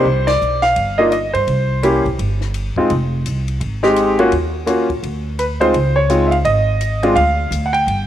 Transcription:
Already playing: grand piano C5
0.05 upright bass C2
0.27 grand piano D5, snare, ride
0.41 upright bass B1, hi-hat pedal
0.62 grand piano F5, snare, ride
0.76 upright bass G1, ride
0.98 grand piano A#3 D4 D#4 F4 D#5
1.12 grand piano D#5, hi-hat pedal, ride
1.33 upright bass G2, grand piano C5, ride
1.47 upright bass C2, ride
1.83 grand piano A#3 C#4 E4 G4, hi-hat pedal, ride
2.05 upright bass B1, kick, ride
2.19 upright bass G1, ride
2.41 snare
2.54 hi-hat pedal, ride
2.76 grand piano G#3 C4 D#4 F4, muted upright bass stroke, kick
2.90 upright bass F1, ride
3.26 upright bass C2, hi-hat pedal, ride
3.48 ride
3.60 upright bass G#1, ride
3.83 grand piano G#3 C4 D#4 G4, snare
3.96 hi-hat pedal, ride
4.19 grand piano A#3 C#4 F4 F#4, ride
4.32 upright bass D#2, ride
4.66 grand piano A#3 C#4 F4 F#4, hi-hat pedal, ride
4.90 kick, ride
5.03 upright bass D2, ride
5.39 grand piano B4, hi-hat pedal, ride
5.60 grand piano G#3 C4 D#4 F4 C5, ride
5.74 upright bass C#2, ride
5.96 grand piano C#5
6.09 grand piano G#3 C4 D#4 F4, hi-hat pedal, ride
6.27 grand piano E5
6.31 grand piano F5, ride
6.45 upright bass G#1, grand piano D#5, ride
6.81 hi-hat pedal, ride
7.03 grand piano G#3 C4 D4 F4, ride
7.15 upright bass D2, grand piano F5, ride
7.51 upright bass D2, hi-hat pedal, ride
7.66 grand piano F#5
7.73 grand piano G5, ride
7.86 upright bass G1, ride

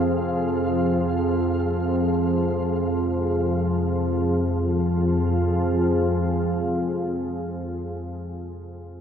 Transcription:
Already playing: synth drone F2 F3, ambient pad C4 F4 G#4 F5, synth texture F5
4.29 synth drone F2 F3, ambient pad C4
4.50 ambient pad F4
4.67 ambient pad G#4
4.88 ambient pad F5

